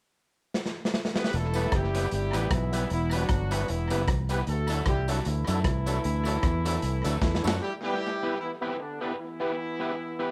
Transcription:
0.54 snare
0.66 snare
0.85 snare
0.94 snare
1.05 snare
1.16 B3 G4 B4, snare
1.24 snare
1.33 E1 A3 E4 A4, closed hi-hat
1.54 G3 B3 E4 G4 B4, closed hi-hat, tambourine
1.72 F#1 G3 E4 G4, kick, cross-stick, closed hi-hat
1.94 G3 B3 E4 G4 B4, closed hi-hat, tambourine
2.11 G1 G3 E4 G4, closed hi-hat
2.33 A1 G3 B3 E4 G4 B4, cross-stick, closed hi-hat, tambourine
2.51 B1 E3 B3 E4, muted clean electric guitar stroke, kick, cross-stick, closed hi-hat
2.72 G3 B3 E4 G4 B4, closed hi-hat, tambourine
2.90 E1 E3 B3 E4, closed hi-hat
3.11 F#3 G3 B3 D4 E4 F#4 G4 B4, closed hi-hat, tambourine
3.29 G1, kick, cross-stick, closed hi-hat
3.51 G3 B3 E4 G4 B4, closed hi-hat, tambourine
3.68 E1 E3 B3 E4, closed hi-hat
3.90 F#1 G3 B3 E4 G4 B4, closed hi-hat, tambourine
4.08 C2, kick, cross-stick, closed hi-hat
4.29 G3 B3 E4 G4 B4, closed hi-hat, tambourine
4.47 D2 A3 F#4 A4, closed hi-hat
4.68 F#3 A3 D4 E4 F#4 A4, closed hi-hat, tambourine
4.86 C2 G3 E4 G4, kick, cross-stick, closed hi-hat
5.08 F#3 A3 D4 E4 F#4 A4, closed hi-hat, tambourine
5.25 D2 E3 A3 E4, closed hi-hat
5.47 F#2 F#3 A3 D4 E4 F#4 A4, closed hi-hat, tambourine
5.64 C2, muted clean electric guitar stroke, kick, cross-stick, closed hi-hat
5.86 F#3 A3 D4 E4 F#4 A4, closed hi-hat, tambourine
6.04 D2, closed hi-hat
6.25 F#3 A3 D4 E4 F#4 A4, closed hi-hat, tambourine
6.43 E2, kick, cross-stick, closed hi-hat
6.65 F#3 A3 D4 E4 F#4 A4, closed hi-hat, tambourine
6.82 C2, closed hi-hat
7.04 D2 F#3 A3 D4 E4 F#4 A4, closed hi-hat, tambourine
7.22 E2 E3 A3 E4, muted clean electric guitar stroke, kick, snare
7.35 snare
7.43 F#2 F#3 A3 D4 E4 F#4 A4, tambourine
7.48 snare
7.62 G3 E4 G4
7.83 G3 B3 E4 G4 B4
8.23 B3 E4 G4 B4
8.40 E3 B3 E4
8.61 E3 B3 C4 E4 G4 B4
8.80 D3 B3 D4, muted clean electric guitar stroke
9.01 D3 B3 D4 E4 G4 B4
9.19 E3 B3 E4
9.40 B3 E4 G4 B4
9.80 B3 E4 G4 B4
10.19 B3 E4 G4 B4

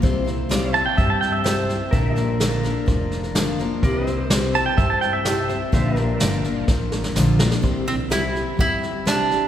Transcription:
0.02 C2 C3 G3 C4 E4 C5, kick, snare
0.24 C4 E4 C5, snare
0.49 C3 G3 C4 E4 C5 D5 F5, snare, hi-hat pedal
0.72 E4 C5 E5 A5, snare
0.76 C4 C5
0.86 G5
0.97 G2 G3 C4 E4 C5 E5, kick, snare
1.10 A5
1.21 G5, snare
1.32 E5
1.44 C3 G3 C4 E4 C5 E5, snare, hi-hat pedal
1.69 C4 E4 C5, snare
1.91 A#1 A#2 D3 F3 A#3 D4 A#4 E5, kick, snare
2.16 F3 A#3 D4 A#4 D5, snare
2.40 A#2 D3 F3 A#3 D4 A#4, snare, hi-hat pedal
2.63 F3 A#3 D4 A#4, snare
2.86 F1 F3 A#3 D4 A#4, kick, snare
3.11 snare
3.23 snare
3.35 A#2 D3 F3 A#3 D4 A#4, snare, hi-hat pedal
3.59 F3 A#3 D4 A#4, snare
3.83 C2 C3 G3 C4 E4 A#4 C5 D5, kick, snare
4.07 C4 E4 C5 E5, snare
4.30 C3 G3 C4 E4 C5, snare, hi-hat pedal
4.54 C4 E4 C5 A5, snare
4.66 G5
4.77 G2 G3 C4 E4 C5 E5, kick, snare
4.90 A5
5.01 G5, snare
5.13 E5
5.25 C3 G3 C4 E4 C5 E5, snare, hi-hat pedal
5.49 C4 E4 C5, snare
5.72 A#1 A#2 D3 F3 A#3 D4 A#4 C5 E5, kick, snare
5.96 F3 A#3 D4 A#4, snare
6.00 D5
6.20 G1 A#2 D3 F3 A#3 D4 A#4, snare, hi-hat pedal
6.44 F3 A#3 D4 A#4, snare
6.68 A1 F3 A#3 D4 A#4, kick, snare
6.92 snare
7.04 snare
7.15 A#1 A#2 D3 F3 A#3 D4 A#4, snare, hi-hat pedal
7.39 F3 A#3 D4 A#4, snare
7.51 snare
7.61 C2 C3 G3 C4 E4 G4, kick, snare
7.85 C4 E4 G4, snare
8.09 C3 G3 C4 E4 G4, snare, hi-hat pedal
8.33 C4 E4 G4, snare
8.57 G1 G3 C4 E4 G4, kick, snare
8.83 snare
9.05 C3 G3 C4 D4 E4 G4, snare, hi-hat pedal
9.29 C4 E4 G4, snare

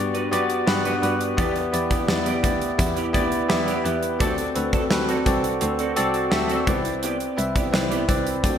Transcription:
Already playing: G2 B3 F#4 G4 B4 D5
0.14 D4 F#4 B4 D5, closed hi-hat
0.31 F#2 B3 D4 F#4 G4 B4 D5, closed hi-hat
0.49 muted clean electric guitar stroke, closed hi-hat
0.67 G2 B3 F#4 G4 B4, muted clean electric guitar stroke, snare
0.85 D4 F#4 B4 D5, closed hi-hat
1.02 G2 B3 D4 F#4 G4 B4 D5, closed hi-hat
1.20 muted clean electric guitar stroke, closed hi-hat
1.37 E2 B3 E4 G4 D5, kick, closed hi-hat
1.55 muted clean electric guitar stroke, closed hi-hat
1.72 E2 B3 E4 G4 D5, muted clean electric guitar stroke, closed hi-hat
1.90 B3 E4 G4 D5, kick, closed hi-hat
2.08 E2 B3 E4 G4 D5, snare
2.26 B3 E4 G4 D5, closed hi-hat
2.43 D2 B3 E4 G4 D5, muted clean electric guitar stroke, kick, closed hi-hat
2.61 muted clean electric guitar stroke, closed hi-hat
2.78 E2 B3 E4 G4 B4, muted clean electric guitar stroke, kick, closed hi-hat
2.97 B3 E4 G4 D5, closed hi-hat
3.13 D2 B3 E4 G4 D5, kick, closed hi-hat
3.32 muted clean electric guitar stroke, closed hi-hat
3.49 E2 B3 E4 G4 E5, snare
3.67 B3 E4 G4 D5, closed hi-hat
3.84 E2 B3 E4 G4 B4 D5, closed hi-hat
4.03 muted clean electric guitar stroke, closed hi-hat
4.19 D2 C4 F#4 A4 D5, kick, closed hi-hat
4.38 muted clean electric guitar stroke, closed hi-hat
4.55 D2 C4 F#4 A4 B4, muted clean electric guitar stroke, closed hi-hat
4.73 C4 F#4 A4 D5, kick, closed hi-hat
4.90 D2 C4 F#4 A4 B4, snare
5.08 C4 F#4 A4 D5, closed hi-hat
5.26 C2 C4 F#4 A4 D5, kick, closed hi-hat
5.44 muted clean electric guitar stroke, closed hi-hat
5.61 D2 C4 F#4 A4 C5, muted clean electric guitar stroke, closed hi-hat
5.79 C4 F#4 A4 D5, closed hi-hat
5.96 C2 C4 F#4 A4 D5, muted clean electric guitar stroke, closed hi-hat
6.14 muted clean electric guitar stroke, closed hi-hat
6.31 D2 C4 F#4 A4 E5, snare
6.49 C4 F#4 A4 D5, closed hi-hat
6.66 C2 B3 C4 E4 G4 B4 D5, kick, closed hi-hat
6.85 muted clean electric guitar stroke, closed hi-hat
7.03 B3 E4 G4 D5, closed hi-hat
7.20 muted clean electric guitar stroke, closed hi-hat
7.37 C2 C4 E4 B4 E5, muted clean electric guitar stroke, closed hi-hat
7.56 B3 E4 G4 D5, kick, closed hi-hat
7.72 C2 C4 E4 B4 D5, muted clean electric guitar stroke, snare
7.91 B3 E4 G4 D5, closed hi-hat
8.08 C2 C4 E4 B4 D5, kick, closed hi-hat
8.26 muted clean electric guitar stroke, closed hi-hat
8.43 D2 C4 F#4 A4 D5, muted clean electric guitar stroke, kick, closed hi-hat

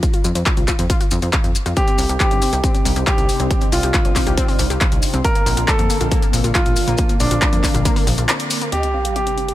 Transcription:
0.03 F4, kick, closed hi-hat, maracas
0.13 F4, closed hi-hat, maracas
0.24 F2 F4, closed hi-hat, maracas
0.35 F2 C5, closed hi-hat, maracas
0.46 F4, kick, clap, closed hi-hat, maracas
0.57 C2 F4, closed hi-hat, maracas
0.68 F4, kick, clap, closed hi-hat, maracas
0.79 F2 C5, closed hi-hat, maracas
0.90 F4, kick, closed hi-hat, maracas
1.01 F4, closed hi-hat, maracas
1.11 F2 C4, maracas
1.22 F2 C5, closed hi-hat, maracas
1.33 F5, kick, clap, closed hi-hat, maracas
1.44 F2, closed hi-hat, maracas
1.55 closed hi-hat, maracas
1.66 F2 F4, closed hi-hat, maracas
1.76 C3 C4 D4 D#4 G4, kick, closed hi-hat, maracas
1.87 C4, closed hi-hat, maracas
1.98 C2 C4, open hi-hat, maracas
2.09 C2 G4, closed hi-hat, maracas
2.20 C4 G4, kick, clap, closed hi-hat, maracas
2.31 G1 C4, closed hi-hat, maracas
2.42 C4, open hi-hat, maracas
2.53 C2 G4, closed hi-hat, maracas
2.64 C4, kick, closed hi-hat, maracas
2.75 C4, closed hi-hat, maracas
2.85 C2 G3, open hi-hat, maracas
2.96 C2 G4, closed hi-hat, maracas
3.07 G4 C5, kick, clap, closed hi-hat, maracas
3.18 C2, closed hi-hat, maracas
3.29 open hi-hat, maracas
3.39 C2 C4, closed hi-hat, maracas
3.50 C4, kick, closed hi-hat, maracas
3.61 C4, closed hi-hat, maracas
3.72 C2 C4 F4, open hi-hat, maracas
3.83 C2 G4, closed hi-hat, maracas
3.94 C4, kick, clap, closed hi-hat, maracas
4.05 G1 C4, closed hi-hat, maracas
4.16 C4, kick, clap, open hi-hat, maracas
4.27 C2 G4, closed hi-hat, maracas
4.37 C4, kick, closed hi-hat, maracas
4.48 C4, open hi-hat, maracas
4.59 C2 G3, open hi-hat, maracas
4.70 C2 G4, closed hi-hat, maracas
4.81 C5, kick, clap, closed hi-hat, maracas
4.92 C2, closed hi-hat, maracas
5.02 open hi-hat, maracas
5.13 C2 C4, closed hi-hat, maracas
5.24 D3 A#3 A#4, kick, closed hi-hat, maracas
5.35 A#3, closed hi-hat, maracas
5.46 A#1 A#3, open hi-hat, maracas
5.57 A#1 F4, closed hi-hat, maracas
5.68 A#3 A4, kick, clap, closed hi-hat, maracas
5.78 F2 A#3, closed hi-hat, maracas
5.90 A#3, open hi-hat, maracas
6.00 A#1 F4, closed hi-hat, maracas
6.11 A#3, kick, closed hi-hat, maracas
6.22 A#3, closed hi-hat, maracas
6.33 A#1 F3, open hi-hat, maracas
6.44 A#1 F4, closed hi-hat, maracas
6.55 F4 A#4, kick, clap, closed hi-hat, maracas
6.66 A#1, closed hi-hat, maracas
6.76 open hi-hat, maracas
6.87 A#1 A#3, closed hi-hat, maracas
6.97 A#3, kick, closed hi-hat, maracas
7.09 A#3, closed hi-hat, maracas
7.20 A#1 A#3 D4, open hi-hat, maracas
7.31 A#1 F4, closed hi-hat, maracas
7.41 A#3, kick, clap, closed hi-hat, maracas
7.53 F2 A#3, closed hi-hat, maracas
7.64 A#3, kick, clap, open hi-hat, maracas
7.74 A#1 F4, closed hi-hat, maracas
7.85 A#3, kick, closed hi-hat, maracas
7.96 A#3, open hi-hat, maracas
8.07 A#1 F3, open hi-hat, maracas
8.18 A#1 F4, closed hi-hat, maracas
8.29 A#4, clap, closed hi-hat, maracas
8.39 closed hi-hat, maracas
8.50 open hi-hat, maracas
8.61 A#3, closed hi-hat, maracas
8.72 C3 G3 C4 D4 D#4 G4 D#5, closed hi-hat, sub drop
8.83 C4, closed hi-hat
8.94 C4 F5
9.05 G4, closed hi-hat
9.16 C4 G4, closed hi-hat
9.27 C4, closed hi-hat
9.38 C4, closed hi-hat
9.48 G4, closed hi-hat

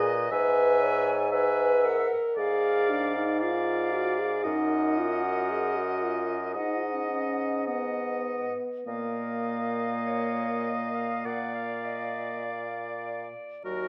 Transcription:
Already playing: A#2 G#4 B4 D#5
0.31 G#2 B4 E5 G#5
0.82 C#5
1.32 B4 E5 G#5
1.85 A#4 F#5
2.36 G#2 G#4 A#4 D5 F5
2.91 D4
3.16 D#4
3.40 F4 A#4 D5 F5
3.93 F#4
4.20 G#4
4.44 F#2 D#4 A#4 D#5 F#5
4.98 F4
5.24 F#4
5.51 G#4
5.77 F#4
6.03 F4
6.54 G#2 D#4 D#5 F#5
6.76 F4
6.85 D#4
6.93 C#4
7.02 D#4
7.10 C#4
7.67 B3 D#5 F#5
8.86 A#2 A#3 A#4 D#5 F5
10.06 C#5
10.66 D#5
10.95 F5
11.25 A#2 D5 F5 F#5
11.55 F5
11.85 D#5
12.46 D5
13.64 D#2 F#3 F#4 A#4

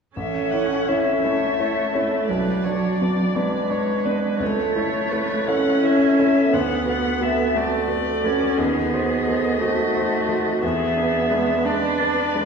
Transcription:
0.16 A1 C#4 A4 E5
0.51 E4 C#5 F#5
0.88 C#4 E4 C#5 E5
1.23 A3 C#4 E4 C#5
1.57 E4 C#5
1.93 C#4 E4 A4 C#5
2.27 B1 F#3 B4 D5
2.64 D4 C#5 D5
3.00 B3 D4 D5
3.35 G#3 B3 D4 B4 D5
3.70 D4 C#5 D5
4.05 B3 D4 B4 D5
4.40 C#2 A3 A4 C#5
4.76 E4 C#5
5.11 A3 E4 B4 C#5
5.46 A3 C#4 E4 A4 C#5 F#5
5.83 E4 C#5 E5
6.18 A3 E4 C#5 E5
6.51 D2 B3 F#5
6.85 F#4 B4 F#5
7.21 A3 F#4 B4 E5
7.54 A3 F#4 A4 B4 D5
7.88 F#4 B4
8.24 A3 C#4 F#4 B4
8.58 D#2 B3 G#4 D#5
8.94 F#4 C5
9.27 A3 F#4 C5
9.61 A3 F#4 C5
9.94 F#4 C5
10.29 A3 F#4 C5
10.63 E2 B3 G#4 E5
10.96 D4 B4
11.31 G#3 D4 B4
11.64 G#3 D4 B4 D5
12.00 D4 B4
12.35 G#3 D4 B4

